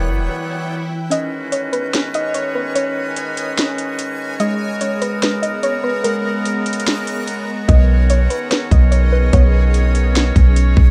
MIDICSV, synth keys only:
0, 0, Header, 1, 2, 480
1, 0, Start_track
1, 0, Key_signature, 5, "major"
1, 0, Tempo, 410959
1, 1299, Time_signature, 4, 2, 24, 8
1, 12738, End_track
2, 0, Start_track
2, 0, Title_t, "Synth keys"
2, 0, Program_c, 0, 88
2, 0, Note_on_c, 0, 52, 86
2, 329, Note_off_c, 0, 52, 0
2, 343, Note_on_c, 0, 52, 72
2, 1289, Note_on_c, 0, 61, 87
2, 1301, Note_off_c, 0, 52, 0
2, 2247, Note_off_c, 0, 61, 0
2, 2261, Note_on_c, 0, 61, 77
2, 3205, Note_off_c, 0, 61, 0
2, 3219, Note_on_c, 0, 61, 87
2, 4167, Note_off_c, 0, 61, 0
2, 4181, Note_on_c, 0, 61, 71
2, 5137, Note_on_c, 0, 56, 89
2, 5140, Note_off_c, 0, 61, 0
2, 6087, Note_off_c, 0, 56, 0
2, 6101, Note_on_c, 0, 56, 71
2, 7046, Note_off_c, 0, 56, 0
2, 7060, Note_on_c, 0, 56, 87
2, 8005, Note_off_c, 0, 56, 0
2, 8019, Note_on_c, 0, 56, 73
2, 8972, Note_on_c, 0, 59, 86
2, 8979, Note_off_c, 0, 56, 0
2, 9922, Note_off_c, 0, 59, 0
2, 9936, Note_on_c, 0, 59, 68
2, 10888, Note_off_c, 0, 59, 0
2, 10902, Note_on_c, 0, 59, 92
2, 11840, Note_off_c, 0, 59, 0
2, 11854, Note_on_c, 0, 59, 72
2, 12738, Note_off_c, 0, 59, 0
2, 12738, End_track
0, 0, End_of_file